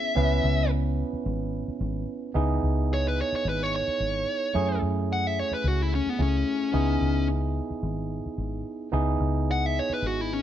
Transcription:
0.00 0.12 B3 medium
0.00 0.12 C#4 medium
0.00 0.12 E4 medium
0.00 0.12 G#4 medium
0.00 0.70 E5 loud
0.15 0.39 C#2 loud
0.15 2.31 B3 medium
0.15 2.31 C#4 medium
0.15 2.31 E4 medium
0.15 2.32 B4 medium
0.44 1.02 C#2 loud
1.13 muted fingered electric bass stroke soft
1.26 1.61 G#1 loud
1.68 muted fingered electric bass stroke soft
1.81 2.03 G#1 loud
2.34 2.58 C#2 medium
2.34 4.50 B3 medium
2.34 4.50 D#4 medium
2.34 4.50 E4 medium
2.34 4.51 G#4 medium
2.63 3.21 C#2 medium
2.94 3.06 C#5 medium
3.08 3.19 B4 medium
3.21 3.34 C#5 medium
3.33 3.46 C#5 medium
3.33 muted fingered electric bass stroke soft
3.45 3.80 G#1 medium
3.45 3.63 B4 medium
3.63 3.74 C#5 medium
3.76 4.80 C#5 medium
3.88 muted fingered electric bass stroke soft
4.00 4.23 G#1 medium
4.54 4.78 F#2 loud
4.54 6.15 A3 medium
4.54 6.16 C#4 medium
4.54 6.16 E4 medium
4.54 6.16 G#4 medium
4.82 5.40 F#2 medium
5.13 5.27 F#5 medium
5.27 5.38 E5 medium
5.39 5.52 C#5 medium
5.51 5.65 B4 medium
5.51 muted fingered electric bass stroke soft
5.64 5.99 C#2 medium
5.64 5.80 F#4 medium
5.82 5.93 E4 medium
5.95 6.09 C#4 medium
6.06 6.20 B3 medium
6.06 muted fingered electric bass stroke soft
6.18 6.42 C#2 medium
6.18 6.73 A3 soft
6.18 6.73 C#4 soft
6.18 7.27 C#4 medium
6.18 6.72 E4 soft
6.18 6.73 G#4 medium
6.73 6.97 C#2 loud
6.73 8.88 B3 medium
6.73 8.88 D#4 medium
6.73 8.89 E4 medium
6.73 8.89 G#4 medium
7.01 7.59 C#2 medium
7.70 muted fingered electric bass stroke soft
7.83 8.18 G#1 medium
8.26 muted fingered electric bass stroke soft
8.38 8.61 G#1 medium
8.92 9.16 C#2 loud
8.92 10.42 B3 medium
8.92 10.42 D#4 medium
8.92 10.42 E4 medium
8.92 10.42 G#4 medium
9.20 9.79 C#2 medium
9.51 9.66 F#5 medium
9.66 9.79 E5 medium
9.79 9.91 C#5 medium
9.90 10.04 B4 medium
9.90 muted fingered electric bass stroke soft
10.02 10.38 G#1 medium
10.07 10.21 F#4 medium
10.21 10.31 E4 medium
10.33 10.42 C#4 medium

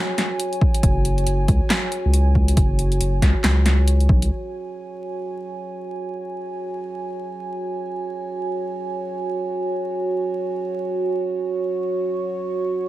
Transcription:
0.00 4.27 F#4 medium
0.00 4.27 C#5 medium
0.00 4.30 G#5 medium
0.18 snare medium
0.18 closed hi-hat soft
0.40 closed hi-hat medium
0.53 closed hi-hat soft
0.61 kick loud
0.74 closed hi-hat medium
0.83 1.26 F#1 loud
0.83 kick loud
0.83 closed hi-hat medium
1.05 closed hi-hat medium
1.18 closed hi-hat soft
1.27 1.47 F#1 medium
1.27 closed hi-hat medium
1.48 1.60 C#2 loud
1.48 kick loud
1.48 closed hi-hat medium
1.70 snare loud
1.70 clap medium
1.70 closed hi-hat medium
1.92 closed hi-hat medium
2.05 2.56 C#2 loud
2.14 closed hi-hat medium
2.35 kick medium
2.48 closed hi-hat medium
2.57 2.99 F#1 loud
2.57 kick loud
2.57 closed hi-hat medium
2.79 closed hi-hat medium
2.92 closed hi-hat soft
3.01 3.21 F#1 medium
3.01 closed hi-hat medium
3.22 3.34 C#2 loud
3.22 kick medium
3.22 snare medium
3.22 closed hi-hat medium
3.44 4.08 C#2 medium
3.44 snare loud
3.44 clap medium
3.44 closed hi-hat medium
3.66 snare medium
3.66 closed hi-hat medium
3.88 closed hi-hat medium
4.00 closed hi-hat soft
4.09 4.24 B1 loud
4.09 kick loud
4.22 4.30 C#2 loud
4.22 closed hi-hat medium
4.31 12.89 F#4 medium
4.31 12.89 C#5 medium
4.31 11.25 G#5 medium
11.26 12.89 C#6 medium

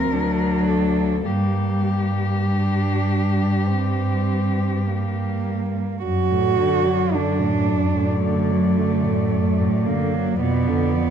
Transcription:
0.00 0.10 D2 soft
0.00 0.14 F3 soft
0.00 0.12 C4 soft
0.00 0.65 A#4 medium
0.11 1.28 D2 soft
0.11 1.26 F#3 soft
0.11 1.24 D4 soft
0.68 1.27 A4 soft
1.25 5.83 G2 soft
1.25 5.78 G3 soft
1.25 2.33 A#3 soft
1.25 5.45 G4 soft
2.46 3.68 D4 soft
3.67 4.88 C4 soft
4.86 6.03 A#3 soft
6.03 6.32 F#2 soft
6.03 10.36 F#2 soft
6.03 7.15 F#4 medium
6.03 10.36 D5 soft
6.31 6.60 A2 soft
6.58 6.87 D3 soft
6.86 7.14 F#3 soft
7.13 7.42 D3 soft
7.13 8.22 D4 soft
7.40 7.70 A2 soft
7.68 7.96 F#2 soft
7.95 8.21 A2 soft
8.22 8.50 D3 soft
8.22 9.87 A3 medium
8.49 8.78 F#3 soft
8.77 9.06 D3 soft
9.04 9.33 A2 soft
9.31 9.61 F#2 soft
9.60 9.88 A2 soft
9.86 10.15 D3 soft
9.86 10.40 A#3 medium
10.14 10.40 F#3 soft
10.40 11.10 F2 soft
10.40 10.69 B2 soft
10.40 11.10 B3 medium
10.40 11.10 D5 soft
10.67 10.95 D3 soft
10.94 11.10 F3 soft

